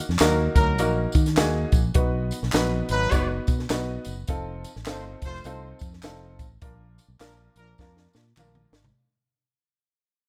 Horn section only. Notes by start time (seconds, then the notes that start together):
0.18 F#3 D#4 A#4
0.55 F#3 D#4 A#4
2.55 F#3 D#4 B4
2.90 F#3 D#4 B4
4.88 A3 F4 C5
5.24 A3 F4 C5
7.19 F3 D4 A#4
7.56 F3 D4 A#4